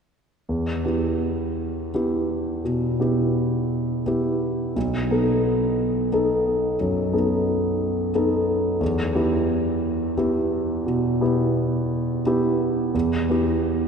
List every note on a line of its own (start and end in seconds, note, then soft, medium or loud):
0.49 0.84 E2 soft
0.85 1.90 B3 soft
0.85 1.90 E4 soft
0.85 1.90 G4 soft
1.94 2.61 B3 soft
1.94 2.61 E4 soft
1.94 2.62 G4 soft
2.65 2.99 B2 soft
3.00 4.01 B3 soft
3.00 4.02 E4 soft
3.00 4.02 G4 soft
4.06 4.72 B3 soft
4.06 4.72 E4 soft
4.06 4.73 G4 soft
4.76 5.09 B1 soft
5.11 6.09 B3 soft
5.11 6.09 D#4 soft
5.11 6.09 A4 soft
6.12 6.75 B3 soft
6.12 6.76 D#4 soft
6.12 6.76 A4 soft
6.81 7.12 F#2 soft
7.13 8.11 B3 soft
7.13 8.10 D#4 soft
7.13 8.11 A4 soft
8.15 8.77 B3 soft
8.15 8.78 D#4 soft
8.15 8.77 A4 soft
8.80 9.13 E2 soft
9.15 10.13 B3 soft
9.15 10.13 E4 soft
9.15 10.14 G4 soft
10.18 10.84 B3 soft
10.18 10.83 E4 soft
10.18 10.84 G4 soft
10.86 11.21 B2 soft
11.21 12.21 B3 soft
11.21 12.21 E4 soft
11.21 12.21 G4 soft
12.26 12.90 B3 soft
12.26 12.90 E4 soft
12.26 12.91 G4 soft
12.94 13.28 E2 soft
13.30 13.88 B3 soft
13.30 13.88 E4 soft
13.30 13.88 G4 soft